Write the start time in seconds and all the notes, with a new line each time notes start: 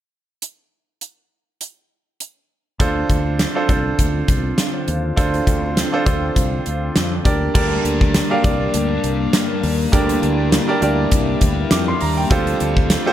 0.42 closed hi-hat
1.01 closed hi-hat
1.61 closed hi-hat
2.20 closed hi-hat
2.79 D2 D3 C4 D4 F4 A4 C5, kick, closed hi-hat
3.10 D2, kick, closed hi-hat
3.39 snare, closed hi-hat
3.55 D4 F4 A4 C5
3.69 C2 D4 F4 A4 C5, kick, closed hi-hat
3.99 D2, kick, closed hi-hat
4.28 C2, kick, closed hi-hat
4.58 snare, closed hi-hat
4.88 D#2, closed hi-hat
5.16 D2 D3 D4 F4 A4 C5, kick, closed hi-hat
5.34 closed hi-hat
5.47 D2, kick, closed hi-hat
5.77 snare, closed hi-hat
5.92 D4 F4 A4 C5
6.05 D2 D4 F4 A4 C5, kick, closed hi-hat
6.36 C2, kick, closed hi-hat
6.66 D2, closed hi-hat
6.96 F2, snare, closed hi-hat
7.25 D2 G3 A#3 D4 G4 A#4 D5, kick, closed hi-hat
7.54 D2 D3 G3 A#3 D4 G4 A#4 D5, kick, crash
7.84 D2 D4 G4, closed hi-hat
8.01 kick
8.14 snare, closed hi-hat
8.30 D4 G4 A#4 F5
8.43 C2 D4 G4 A#4 D5, kick, closed hi-hat
8.72 D2 G3 D4, closed hi-hat
8.78 G4
9.04 C2, closed hi-hat
9.33 snare, closed hi-hat
9.63 D#2, open hi-hat
9.92 D2 D3 G3 D4 E4 G4 A#4 D5, kick, closed hi-hat
10.09 closed hi-hat
10.22 D2 D4 G4, closed hi-hat
10.52 snare, closed hi-hat
10.68 D4 G4 A#4 D5
10.82 D2 D4 G4 A#4 D5, closed hi-hat
11.10 C2 G3 D4, kick, closed hi-hat
11.16 G4
11.41 D2, kick, closed hi-hat
11.71 F2 D6, snare, closed hi-hat
11.88 C6
12.01 D#2 A#5, open hi-hat
12.17 G5
12.30 D2 D3 F3 A3 C4 F4 G4 A4 C5, kick, closed hi-hat
12.47 closed hi-hat
12.60 D2 C4 F4, closed hi-hat
12.77 kick
12.90 snare, closed hi-hat
13.06 F4 G4 A4 C5